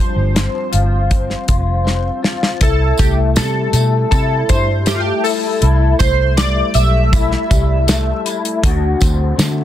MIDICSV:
0, 0, Header, 1, 5, 480
1, 0, Start_track
1, 0, Key_signature, 0, "major"
1, 0, Tempo, 751880
1, 1669, Time_signature, 4, 2, 24, 8
1, 6155, End_track
2, 0, Start_track
2, 0, Title_t, "Synth keys"
2, 0, Program_c, 0, 88
2, 0, Note_on_c, 0, 72, 86
2, 1409, Note_off_c, 0, 72, 0
2, 1676, Note_on_c, 0, 69, 94
2, 1913, Note_on_c, 0, 67, 71
2, 1920, Note_off_c, 0, 69, 0
2, 2002, Note_off_c, 0, 67, 0
2, 2150, Note_on_c, 0, 69, 82
2, 2616, Note_off_c, 0, 69, 0
2, 2624, Note_on_c, 0, 69, 86
2, 2866, Note_on_c, 0, 72, 80
2, 2874, Note_off_c, 0, 69, 0
2, 3112, Note_on_c, 0, 67, 92
2, 3116, Note_off_c, 0, 72, 0
2, 3132, Note_off_c, 0, 67, 0
2, 3160, Note_on_c, 0, 65, 77
2, 3192, Note_on_c, 0, 67, 90
2, 3202, Note_off_c, 0, 65, 0
2, 3336, Note_off_c, 0, 67, 0
2, 3343, Note_on_c, 0, 69, 87
2, 3801, Note_off_c, 0, 69, 0
2, 3824, Note_on_c, 0, 72, 92
2, 4068, Note_on_c, 0, 74, 101
2, 4075, Note_off_c, 0, 72, 0
2, 4307, Note_on_c, 0, 76, 91
2, 4316, Note_off_c, 0, 74, 0
2, 5243, Note_off_c, 0, 76, 0
2, 6155, End_track
3, 0, Start_track
3, 0, Title_t, "Clean electric guitar"
3, 0, Program_c, 1, 27
3, 0, Note_on_c, 1, 43, 78
3, 0, Note_on_c, 1, 53, 61
3, 0, Note_on_c, 1, 60, 61
3, 218, Note_off_c, 1, 60, 0
3, 220, Note_on_c, 1, 60, 62
3, 459, Note_on_c, 1, 65, 56
3, 700, Note_off_c, 1, 60, 0
3, 702, Note_on_c, 1, 60, 61
3, 938, Note_off_c, 1, 65, 0
3, 946, Note_on_c, 1, 65, 59
3, 1175, Note_off_c, 1, 60, 0
3, 1178, Note_on_c, 1, 60, 59
3, 1413, Note_off_c, 1, 65, 0
3, 1421, Note_on_c, 1, 65, 61
3, 1666, Note_off_c, 1, 43, 0
3, 1666, Note_off_c, 1, 65, 0
3, 1669, Note_on_c, 1, 64, 73
3, 1715, Note_off_c, 1, 53, 0
3, 1898, Note_off_c, 1, 60, 0
3, 1900, Note_on_c, 1, 57, 65
3, 2139, Note_on_c, 1, 55, 63
3, 2373, Note_off_c, 1, 57, 0
3, 2376, Note_on_c, 1, 57, 58
3, 2621, Note_off_c, 1, 64, 0
3, 2623, Note_on_c, 1, 64, 71
3, 2863, Note_off_c, 1, 55, 0
3, 2866, Note_on_c, 1, 55, 52
3, 3107, Note_off_c, 1, 57, 0
3, 3109, Note_on_c, 1, 57, 69
3, 3342, Note_off_c, 1, 64, 0
3, 3345, Note_on_c, 1, 64, 53
3, 3579, Note_off_c, 1, 64, 0
3, 3582, Note_on_c, 1, 64, 64
3, 3819, Note_off_c, 1, 57, 0
3, 3822, Note_on_c, 1, 57, 69
3, 3841, Note_off_c, 1, 55, 0
3, 4070, Note_on_c, 1, 55, 61
3, 4302, Note_off_c, 1, 57, 0
3, 4305, Note_on_c, 1, 57, 62
3, 4541, Note_off_c, 1, 64, 0
3, 4549, Note_on_c, 1, 64, 76
3, 4778, Note_off_c, 1, 55, 0
3, 4786, Note_on_c, 1, 55, 66
3, 5023, Note_off_c, 1, 57, 0
3, 5026, Note_on_c, 1, 57, 67
3, 5260, Note_off_c, 1, 64, 0
3, 5267, Note_on_c, 1, 64, 61
3, 5508, Note_on_c, 1, 50, 89
3, 5509, Note_off_c, 1, 64, 0
3, 5514, Note_on_c, 1, 66, 81
3, 5556, Note_off_c, 1, 55, 0
3, 5746, Note_off_c, 1, 57, 0
3, 5748, Note_on_c, 1, 60, 66
3, 5987, Note_on_c, 1, 57, 67
3, 6155, Note_off_c, 1, 50, 0
3, 6155, Note_off_c, 1, 57, 0
3, 6155, Note_off_c, 1, 60, 0
3, 6155, Note_off_c, 1, 66, 0
3, 6155, End_track
4, 0, Start_track
4, 0, Title_t, "Fingered electric bass"
4, 0, Program_c, 2, 33
4, 103, Note_on_c, 2, 31, 91
4, 297, Note_off_c, 2, 31, 0
4, 468, Note_on_c, 2, 31, 88
4, 852, Note_off_c, 2, 31, 0
4, 951, Note_on_c, 2, 29, 80
4, 1334, Note_off_c, 2, 29, 0
4, 1669, Note_on_c, 2, 36, 93
4, 1861, Note_off_c, 2, 36, 0
4, 1914, Note_on_c, 2, 36, 83
4, 2147, Note_on_c, 2, 48, 94
4, 2157, Note_off_c, 2, 36, 0
4, 2340, Note_off_c, 2, 48, 0
4, 2381, Note_on_c, 2, 47, 92
4, 2577, Note_off_c, 2, 47, 0
4, 2630, Note_on_c, 2, 48, 97
4, 2822, Note_off_c, 2, 48, 0
4, 2871, Note_on_c, 2, 43, 95
4, 3255, Note_off_c, 2, 43, 0
4, 3590, Note_on_c, 2, 36, 103
4, 3782, Note_off_c, 2, 36, 0
4, 3836, Note_on_c, 2, 36, 97
4, 4218, Note_off_c, 2, 36, 0
4, 4308, Note_on_c, 2, 35, 94
4, 4693, Note_off_c, 2, 35, 0
4, 4797, Note_on_c, 2, 36, 86
4, 5178, Note_off_c, 2, 36, 0
4, 5514, Note_on_c, 2, 38, 89
4, 5704, Note_off_c, 2, 38, 0
4, 5758, Note_on_c, 2, 38, 94
4, 5947, Note_off_c, 2, 38, 0
4, 5990, Note_on_c, 2, 50, 107
4, 6155, Note_off_c, 2, 50, 0
4, 6155, End_track
5, 0, Start_track
5, 0, Title_t, "Drums"
5, 230, Note_on_c, 9, 42, 76
5, 232, Note_on_c, 9, 38, 100
5, 293, Note_off_c, 9, 42, 0
5, 296, Note_off_c, 9, 38, 0
5, 464, Note_on_c, 9, 42, 69
5, 528, Note_off_c, 9, 42, 0
5, 708, Note_on_c, 9, 42, 72
5, 709, Note_on_c, 9, 36, 91
5, 771, Note_off_c, 9, 42, 0
5, 773, Note_off_c, 9, 36, 0
5, 831, Note_on_c, 9, 38, 36
5, 894, Note_off_c, 9, 38, 0
5, 945, Note_on_c, 9, 42, 58
5, 949, Note_on_c, 9, 36, 82
5, 1009, Note_off_c, 9, 42, 0
5, 1013, Note_off_c, 9, 36, 0
5, 1194, Note_on_c, 9, 38, 52
5, 1257, Note_off_c, 9, 38, 0
5, 1432, Note_on_c, 9, 38, 78
5, 1496, Note_off_c, 9, 38, 0
5, 1551, Note_on_c, 9, 38, 70
5, 1615, Note_off_c, 9, 38, 0
5, 1665, Note_on_c, 9, 42, 101
5, 1665, Note_on_c, 9, 54, 29
5, 1667, Note_on_c, 9, 36, 111
5, 1729, Note_off_c, 9, 42, 0
5, 1729, Note_off_c, 9, 54, 0
5, 1731, Note_off_c, 9, 36, 0
5, 1899, Note_on_c, 9, 54, 49
5, 1910, Note_on_c, 9, 42, 87
5, 1911, Note_on_c, 9, 36, 91
5, 1963, Note_off_c, 9, 54, 0
5, 1974, Note_off_c, 9, 42, 0
5, 1975, Note_off_c, 9, 36, 0
5, 2143, Note_on_c, 9, 54, 79
5, 2147, Note_on_c, 9, 42, 83
5, 2150, Note_on_c, 9, 38, 116
5, 2207, Note_off_c, 9, 54, 0
5, 2211, Note_off_c, 9, 42, 0
5, 2214, Note_off_c, 9, 38, 0
5, 2382, Note_on_c, 9, 42, 76
5, 2390, Note_on_c, 9, 54, 48
5, 2446, Note_off_c, 9, 42, 0
5, 2454, Note_off_c, 9, 54, 0
5, 2629, Note_on_c, 9, 36, 102
5, 2630, Note_on_c, 9, 42, 68
5, 2630, Note_on_c, 9, 54, 49
5, 2693, Note_off_c, 9, 36, 0
5, 2693, Note_off_c, 9, 42, 0
5, 2694, Note_off_c, 9, 54, 0
5, 2867, Note_on_c, 9, 42, 69
5, 2871, Note_on_c, 9, 36, 84
5, 2875, Note_on_c, 9, 54, 44
5, 2931, Note_off_c, 9, 42, 0
5, 2934, Note_off_c, 9, 36, 0
5, 2939, Note_off_c, 9, 54, 0
5, 3102, Note_on_c, 9, 42, 88
5, 3109, Note_on_c, 9, 38, 98
5, 3114, Note_on_c, 9, 54, 69
5, 3166, Note_off_c, 9, 42, 0
5, 3173, Note_off_c, 9, 38, 0
5, 3178, Note_off_c, 9, 54, 0
5, 3348, Note_on_c, 9, 46, 62
5, 3356, Note_on_c, 9, 54, 30
5, 3412, Note_off_c, 9, 46, 0
5, 3420, Note_off_c, 9, 54, 0
5, 3586, Note_on_c, 9, 42, 90
5, 3650, Note_off_c, 9, 42, 0
5, 3827, Note_on_c, 9, 54, 45
5, 3831, Note_on_c, 9, 42, 80
5, 3832, Note_on_c, 9, 36, 97
5, 3890, Note_off_c, 9, 54, 0
5, 3895, Note_off_c, 9, 42, 0
5, 3896, Note_off_c, 9, 36, 0
5, 4070, Note_on_c, 9, 42, 75
5, 4070, Note_on_c, 9, 54, 78
5, 4072, Note_on_c, 9, 38, 121
5, 4134, Note_off_c, 9, 42, 0
5, 4134, Note_off_c, 9, 54, 0
5, 4136, Note_off_c, 9, 38, 0
5, 4303, Note_on_c, 9, 42, 77
5, 4313, Note_on_c, 9, 54, 48
5, 4366, Note_off_c, 9, 42, 0
5, 4377, Note_off_c, 9, 54, 0
5, 4551, Note_on_c, 9, 36, 108
5, 4552, Note_on_c, 9, 42, 78
5, 4552, Note_on_c, 9, 54, 44
5, 4615, Note_off_c, 9, 36, 0
5, 4616, Note_off_c, 9, 42, 0
5, 4616, Note_off_c, 9, 54, 0
5, 4671, Note_on_c, 9, 38, 39
5, 4735, Note_off_c, 9, 38, 0
5, 4793, Note_on_c, 9, 36, 85
5, 4793, Note_on_c, 9, 54, 49
5, 4794, Note_on_c, 9, 42, 63
5, 4857, Note_off_c, 9, 36, 0
5, 4857, Note_off_c, 9, 54, 0
5, 4858, Note_off_c, 9, 42, 0
5, 5031, Note_on_c, 9, 42, 90
5, 5032, Note_on_c, 9, 54, 64
5, 5037, Note_on_c, 9, 38, 106
5, 5095, Note_off_c, 9, 42, 0
5, 5096, Note_off_c, 9, 54, 0
5, 5101, Note_off_c, 9, 38, 0
5, 5273, Note_on_c, 9, 42, 77
5, 5274, Note_on_c, 9, 54, 27
5, 5336, Note_off_c, 9, 42, 0
5, 5338, Note_off_c, 9, 54, 0
5, 5395, Note_on_c, 9, 42, 53
5, 5459, Note_off_c, 9, 42, 0
5, 5513, Note_on_c, 9, 36, 118
5, 5515, Note_on_c, 9, 42, 113
5, 5577, Note_off_c, 9, 36, 0
5, 5578, Note_off_c, 9, 42, 0
5, 5749, Note_on_c, 9, 54, 45
5, 5756, Note_on_c, 9, 36, 103
5, 5757, Note_on_c, 9, 42, 85
5, 5813, Note_off_c, 9, 54, 0
5, 5820, Note_off_c, 9, 36, 0
5, 5821, Note_off_c, 9, 42, 0
5, 5994, Note_on_c, 9, 42, 71
5, 5995, Note_on_c, 9, 54, 88
5, 5997, Note_on_c, 9, 38, 120
5, 6058, Note_off_c, 9, 42, 0
5, 6059, Note_off_c, 9, 54, 0
5, 6060, Note_off_c, 9, 38, 0
5, 6155, End_track
0, 0, End_of_file